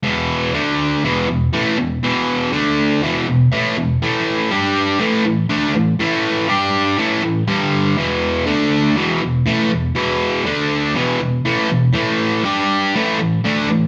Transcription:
\new Staff \with { instrumentName = "Distorted electric guitar" } { \clef bass \time 4/4 \key a \major \tempo 4 = 121 <e, b, e>4 <d a d'>4 <e, b, e>8 <e, b,>8 <a, e a>8 <e, b,>8 | <e, b, e>4 <d a d'>4 <e, b, e>8 <e, b,>8 <a, e a>8 <e, b,>8 | <a, e a>4 <g d' g'>4 <a, e a>8 <a, e>8 <d a d'>8 <a, e>8 | <a, e a>4 <g d' g'>4 <a, e a>8 <a, e>8 <g, d g>4 |
<e, b, e>4 <d a d'>4 <e, b, e>8 <e, b,>8 <a, e a>8 <e, b,>8 | <e, b, e>4 <d a d'>4 <e, b, e>8 <e, b,>8 <a, e a>8 <e, b,>8 | <a, e a>4 <g d' g'>4 <a, e a>8 <a, e>8 <d a d'>8 <a, e>8 | }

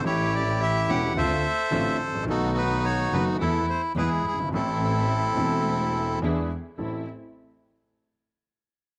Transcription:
<<
  \new Staff \with { instrumentName = "Bandoneon" } { \time 4/4 \key e \phrygian \tempo 4 = 107 << { cis''8 d''8 e''8 fis''8 e''4. r8 | a'8 b'8 cis''8 b'8 a'8 c''8 b'8 gis'8 | a'2. r4 | r1 | } \\ { <e' g'>2 <a' c''>2 | <dis' fis'>2 e'4 <e' gis'>4 | <c' e'>2. r4 | r1 | } >> }
  \new Staff \with { instrumentName = "String section" } { \time 4/4 \key e \phrygian <a cis' g'>4. <a cis' g'>8 <c' d' f'>8 r8 <c' d' f'>8 r8 | <a b dis'>4. <a b dis'>8 <a b e'>8 r8 <gis b e'>8 r8 | <a c' e'>4. <a c' e'>4. <gis d' e'>8 r8 | <a c' e'>8 r2. r8 | }
  \new Staff \with { instrumentName = "Grand piano" } { \clef bass \time 4/4 \key e \phrygian <a,, a, e a cis' g'>4. <e,, e, e a cis' g'>8 <d, d a c' f'>8 r8 <a,, a, d a c' f'>8 r32 gis,,32 a,,32 bes,,32 | <b,, b, dis a b fis'>4. <fis,, fis, dis a b fis'>8 <e, e a b a'>8 r8 <e, e gis b gis'>8 r32 fis,,32 g,,32 gis,,32 | <a,, a, e a c' a'>4. <e,, e, e a c' a'>4. <e, e b d' gis'>8 r8 | <a,, c' e' a'>8 r2. r8 | }
  \new Staff \with { instrumentName = "Double bass" } { \clef bass \time 4/4 \key e \phrygian a,,4. e,,8 d,8 r8 a,,8 a,,8 | b,,4. fis,,8 e,8 r8 e,8 g,,8 | a,,4. e,,4. e,8 r8 | a,,8 r2. r8 | }
>>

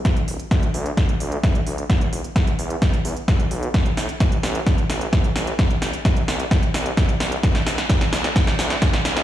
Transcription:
<<
  \new Staff \with { instrumentName = "Detuned saw bass" } { \clef bass \time 4/4 \key d \mixolydian \tempo 4 = 130 d,8 d,,8 d,8 d,8 a,,8 d,8 d,8 d,8 | e,8 e,,8 e,8 e,8 b,,8 e,8 e,8 b,,8 | a,,8 a,8 a,,8 a,,8 e,8 a,,8 a,,8 a,,8 | c,8 g,,8 c,8 c,8 g,,8 c,8 c,8 c,8 |
d,8 d,,8 d,8 d,8 a,,8 d,8 d,8 d,8 | }
  \new DrumStaff \with { instrumentName = "Drums" } \drummode { \time 4/4 <hh bd sn>16 hh16 hho16 hh16 <hh bd sn>16 hh16 hho16 hh16 <hh bd sn>16 hh16 hho16 hh16 <hh bd sn>16 hh16 hho16 hh16 | <hh bd sn>16 hh16 hho16 hh16 <hh bd sn>16 hh16 hho16 hh16 <hh bd sn>16 hh16 hho16 hh16 <hh bd sn>16 hh16 hho16 hh16 | <hh bd sn>16 hh16 <hho sn>16 hh16 <hh bd sn>16 hh16 <hho sn>16 hh16 <hh bd sn>16 hh16 <hho sn>16 hh16 <hh bd sn>16 hh16 <hho sn>16 hh16 | <hh bd sn>16 hh16 <hho sn>16 hh16 <hh bd sn>16 hh16 <hho sn>16 hh16 <hh bd sn>16 hh16 <hho sn>16 hh16 <hh bd sn>16 hh16 <hho sn>16 hh16 |
<hh bd sn>16 <hh sn>16 <hho sn>16 <hh sn>16 <hh bd sn>16 <hh sn>16 <hho sn>16 <hh sn>16 <hh bd sn>16 <hh sn>16 <hho sn>16 <hh sn>16 <hh bd sn>16 <hh sn>16 <hho sn>16 <hh sn>16 | }
>>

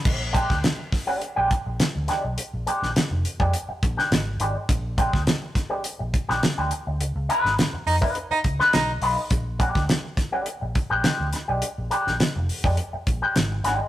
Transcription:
<<
  \new Staff \with { instrumentName = "Baritone saxophone" } { \time 4/4 \key bes \mixolydian \tempo 4 = 104 r1 | r1 | r1 | r4. ees'16 r8 ees'16 r8 ees'8 r8 |
r1 | r1 | }
  \new Staff \with { instrumentName = "Clean electric guitar" } { \time 4/4 \key bes \mixolydian r8 <aes d' g'>16 r4 <aes d' g'>16 r16 <aes d' g'>16 r4 <aes d' g'>16 r16 | r8 <aes d' g'>16 r4 <aes d' g'>16 r8. <aes d' g'>16 r8 <aes d' g'>16 r16 | r8 <aes d' g'>16 r4 <aes d' g'>16 r8. <aes d' g'>16 r16 <aes d' g'>16 r8 | r8 <ees' f' ces''>16 r4 <ees' f' ces''>16 r8. <ees' f' ces''>16 r8 <ees' f' ces''>16 r16 |
r8 <aes d' g'>16 r4 <aes d' g'>16 r8. <aes d' g'>16 <aes d' g'>16 r8 <aes d' g'>16 | r8 <aes d' g'>16 r4 <aes d' g'>16 r8. <aes d' g'>16 r8 <aes d' g'>16 r16 | }
  \new Staff \with { instrumentName = "Fingered electric bass" } { \clef bass \time 4/4 \key bes \mixolydian bes,,8. d,16 r4 r16 bes,,16 r16 bes,,16 r16 d,16 r16 ces,16 | r16 bes,,16 r16 bes,,16 r16 f,,16 r16 f,16 r8 bes,,16 r16 aes,,8 aes,,16 r16 | bes,,8. d,16 r4 r16 bes,,16 r16 bes,,16 r16 d,16 r16 d,16 | des,16 des,16 r16 aes,,16 r8 f,16 r8. des,16 r16 ces,8 ces,16 r16 |
bes,,8. d,16 r4 r16 bes,,16 r16 bes,,16 r16 d,16 r16 ces,16 | r16 bes,,16 r16 bes,,16 r16 f,,16 r16 f,16 r8 bes,,16 r16 aes,,8 aes,,16 r16 | }
  \new DrumStaff \with { instrumentName = "Drums" } \drummode { \time 4/4 <cymc bd>8 <hh bd>16 <bd sn>16 <hh sn>8 <hho bd sn>8 hh8 <hh bd>8 <hh sn>8 <hh sn>8 | hh8 hh16 sn16 <hh sn>8 hh16 bd16 hh8 <hh bd>16 sn16 <hh sn>8 hh8 | <hh bd>8 <hh bd>16 <bd sn>16 <hh sn>8 <hh bd sn>8 hh8 <hh bd>16 sn16 <hh sn>8 hh8 | hh8 hh16 sn16 <hh sn>8 hho16 bd16 hh8 <hh bd>16 sn16 <hh sn>8 hho8 |
<hh bd>8 <hh bd>16 <bd sn>16 <hh sn>8 <hh bd sn>8 hh8 <hh bd>8 <hh sn>8 <hh sn>8 | hh8 hh16 sn16 <hh sn>8 hho16 bd16 hh8 <hh bd>8 <hh sn>8 <hh sn>8 | }
>>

